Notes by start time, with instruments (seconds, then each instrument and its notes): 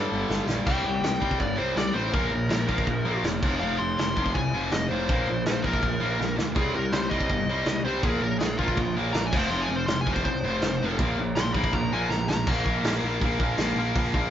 Already playing: distorted electric guitar G2 D3 G3, lead electric guitar A4
0.12 picked electric bass G1
0.30 picked electric bass G1, snare
0.47 picked electric bass A#1, snare
0.66 picked electric bass C2, distorted electric guitar C3 G3 C4, lead electric guitar G5, kick, crash
0.84 picked electric bass C2, distorted electric guitar C3 G3
1.01 picked electric bass C2, distorted electric guitar C3 G3, snare, crash
1.20 picked electric bass C2, distorted electric guitar C3 G3 C4, kick
1.31 kick
1.40 picked electric bass G1, distorted electric guitar C3 G3, lead electric guitar D5, kick, crash
1.56 picked electric bass C2, distorted electric guitar C3 G3 C4, lead electric guitar C5
1.75 picked electric bass C2, distorted electric guitar C3 G3, lead electric guitar D5, snare, crash
1.93 picked electric bass A1, distorted electric guitar C3 G3 C4, lead electric guitar C5
2.12 picked electric bass A#1, distorted electric guitar A#2 F3 A#3, lead electric guitar A#4, kick, crash
2.30 picked electric bass A#1, distorted electric guitar A#2 F3
2.49 picked electric bass A#1, distorted electric guitar A#2 F3, snare, crash
2.67 picked electric bass A#1, distorted electric guitar A#2 F3 A#3, kick
2.78 kick
2.86 picked electric bass A#1, distorted electric guitar A#2 F3, kick, crash
3.05 picked electric bass A#1, distorted electric guitar A#2 F3 A#3
3.24 picked electric bass E1, distorted electric guitar A#2 F3, snare, crash
3.43 picked electric bass F1, distorted electric guitar F2 C3 F3, kick, crash
3.60 picked electric bass F1, distorted electric guitar F2 C3 F3, lead electric guitar F5, crash
3.78 picked electric bass F1, distorted electric guitar F2 C3, lead electric guitar C6
3.98 picked electric bass F1, distorted electric guitar F2 C3, snare, crash
4.16 picked electric bass F1, distorted electric guitar F2 C3 F3, kick
4.26 kick
4.34 picked electric bass C2, distorted electric guitar F2 C3, lead electric guitar G#5, kick, crash
4.54 picked electric bass F1, distorted electric guitar F2 C3 F3
4.72 picked electric bass F1, distorted electric guitar F2 C3, lead electric guitar D#5, snare, crash
4.89 picked electric bass F1, distorted electric guitar F2 C3 F3, lead electric guitar C5
5.09 picked electric bass A#1, distorted electric guitar A#2 F3 A#3, kick, crash
5.28 picked electric bass A#1, distorted electric guitar A#2 F3
5.45 picked electric bass A#1, distorted electric guitar A#2 F3, lead electric guitar C5, snare, crash
5.62 picked electric bass A#1, distorted electric guitar A#2, lead electric guitar A#4, kick
5.67 distorted electric guitar F3 A#3
5.73 kick
5.83 picked electric bass A#1, distorted electric guitar A#2 F3, kick, crash
6.01 picked electric bass A#1, distorted electric guitar A#2 F3 A#3
6.19 picked electric bass A#1, distorted electric guitar A#2 F3, snare
6.36 picked electric bass D2, distorted electric guitar A#2 F3, snare
6.55 picked electric bass C2, distorted electric guitar C3 G3 C4, lead electric guitar G#4, kick, crash
6.75 picked electric bass C2, distorted electric guitar C3 G3, lead electric guitar A#4
6.92 picked electric bass C2, distorted electric guitar C3 G3, lead electric guitar C5, snare, crash
7.10 picked electric bass C2, distorted electric guitar C3 G3 C4, lead electric guitar D#5, kick
7.21 kick
7.29 picked electric bass G1, distorted electric guitar C3 G3, kick, crash
7.47 picked electric bass C2, distorted electric guitar C3 G3 C4
7.66 picked electric bass C2, distorted electric guitar C3 G3, snare, crash
7.84 picked electric bass C2, distorted electric guitar C3 G3 C4, lead electric guitar C5
8.03 picked electric bass A#1, distorted electric guitar A#2 F3 A#3, lead electric guitar G#4, kick, crash
8.20 picked electric bass A#1, distorted electric guitar A#2 F3, lead electric guitar A#4
8.39 picked electric bass A#1, distorted electric guitar A#2 F3, lead electric guitar G#4, snare, crash
8.58 picked electric bass A#1, distorted electric guitar A#2 F3 A#3, lead electric guitar F4, kick
8.68 kick
8.77 picked electric bass A#1, distorted electric guitar A#2 F3, kick, crash
8.95 picked electric bass A#1, distorted electric guitar A#2 F3 A#3
9.13 picked electric bass A#1, distorted electric guitar A#2 F3, lead electric guitar A#5, snare, crash
9.27 lead electric guitar G#5
9.32 picked electric bass F1, distorted electric guitar F2 C3 F3, kick, crash
9.38 lead electric guitar C5
9.50 picked electric bass F1, distorted electric guitar F2 C3 F3, lead electric guitar C6, crash
9.62 lead electric guitar G#5
9.69 picked electric bass F1, distorted electric guitar F2 C3
9.76 lead electric guitar C5
9.86 picked electric bass F1, distorted electric guitar F2, lead electric guitar C6, snare, crash
9.91 distorted electric guitar C3
10.01 lead electric guitar G#5
10.07 picked electric bass F1, distorted electric guitar F2 C3 F3, kick
10.13 lead electric guitar C5, kick
10.25 picked electric bass C2, distorted electric guitar F2 C3, lead electric guitar C5, kick, crash
10.44 picked electric bass F1, distorted electric guitar F2 C3 F3
10.61 picked electric bass F1, distorted electric guitar F2 C3, snare, crash
10.82 picked electric bass F1, distorted electric guitar F2 C3 F3
10.99 picked electric bass A#1, distorted electric guitar A#2 F3 A#3, kick, crash
11.18 picked electric bass A#1, distorted electric guitar A#2 F3
11.36 picked electric bass A#1, distorted electric guitar A#2 F3, lead electric guitar C6, snare, crash
11.54 picked electric bass A#1, distorted electric guitar A#2 F3 A#3, lead electric guitar B5, kick
11.64 kick
11.73 picked electric bass A#1, distorted electric guitar A#2 F3, lead electric guitar A#5, kick, crash
11.91 picked electric bass A#1, distorted electric guitar A#2 F3 A#3, lead electric guitar G#5
12.09 picked electric bass A#1, distorted electric guitar A#2 F3, lead electric guitar A#5, snare
12.27 picked electric bass A#1, distorted electric guitar A#2 F3, lead electric guitar A#5, snare
12.47 picked electric bass A#1, distorted electric guitar A#2 F3 A#3, kick, crash
12.65 picked electric bass A#1, distorted electric guitar A#2 F3 A#3, kick
12.83 picked electric bass A#1, distorted electric guitar A#2 F3 A#3, snare, open hi-hat
13.03 picked electric bass A#1, distorted electric guitar A#2 F3 A#3
13.21 picked electric bass A#1, distorted electric guitar A#2 F3 A#3, kick, open hi-hat
13.39 picked electric bass A#1, distorted electric guitar A#2 F3 A#3, kick
13.58 picked electric bass A#1, distorted electric guitar A#2 F3 A#3, snare, open hi-hat
13.75 picked electric bass A#1, distorted electric guitar A#2 F3 A#3
13.95 picked electric bass A#1, distorted electric guitar A#2 F3 A#3, kick, open hi-hat
14.14 picked electric bass A#1, distorted electric guitar A#2 F3 A#3, kick